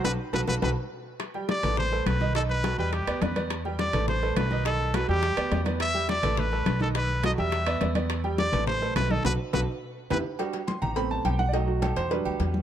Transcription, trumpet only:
X:1
M:4/4
L:1/16
Q:1/4=209
K:Em
V:1 name="Trumpet"
B2 z2 B2 B2 B2 z6 | z4 d4 c4 B4 | A2 B4 B2 G4 B3 z | z4 d4 c4 B4 |
A4 B2 G8 z2 | e4 d4 B6 A2 | B4 ^d2 e8 z2 | z4 d4 c4 B2 A2 |
B2 z2 B2 z6 B2 z2 | z16 | z16 |]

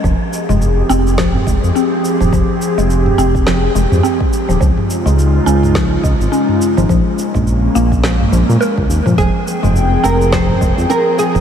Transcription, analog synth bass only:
X:1
M:4/4
L:1/16
Q:"Swing 16ths" 1/4=105
K:Fm
V:1 name="Analog synth bass" clef=bass
F,,, z2 F,,,2 z F,,,3 z F,,, F,, z3 E,,, | F,,, z2 F,,,2 z F,,,3 z F,,, F,, z3 E,,, | D,, z2 D,,2 z D,,3 z D,, A,,, z3 A,,, | B,,, z2 B,,,2 z B,,,3 z B,,, B,, z D,, E,, B,, |
F,,, z2 F,,,2 z F,,,3 z F,,, F,, z3 E,,, |]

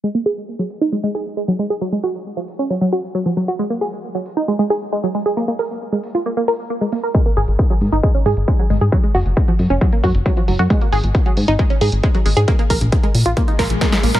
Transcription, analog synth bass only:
X:1
M:4/4
L:1/16
Q:1/4=135
K:A#phr
V:1 name="Analog synth bass" clef=bass
z16 | z16 | z16 | z16 |
z2 G,,, G,,, z2 G,, G,,, z2 G,, G,,, z2 G,,, G,, | z2 F,,, F,,, z2 F,, F,,, z2 F,, F,,, z2 F,,, F,, | z2 G,,, G,,, z2 G,, G,,, z2 G,, G,,, z2 G,,, G,, | z2 A,,, A,,, z2 A,, A,,, z2 A,,, A,,, z2 A,,, A,, |]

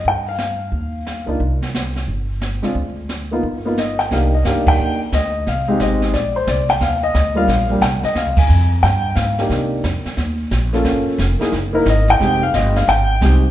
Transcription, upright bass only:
X:1
M:4/4
L:1/8
Q:"Swing" 1/4=178
K:Cm
V:1 name="Upright bass" clef=bass
G,,4 E,,3 _D,, | C,,4 G,,,3 _D,, | D,,4 G,,,4 | C,,2 G,, z E,,2 D,,2 |
C,,2 A,,,2 B,,,2 C,,2 | E,,2 D,,2 B,,,2 C,, z | (3D,, C,, A,,, F,,2 G,,2 A,,2 | C,2 F,, z E,,2 B,,,2 |
G,,, z F,,, z ^F,,,2 ^G,,,2 | F,,,2 G,,,2 A,,,2 C,,2 |]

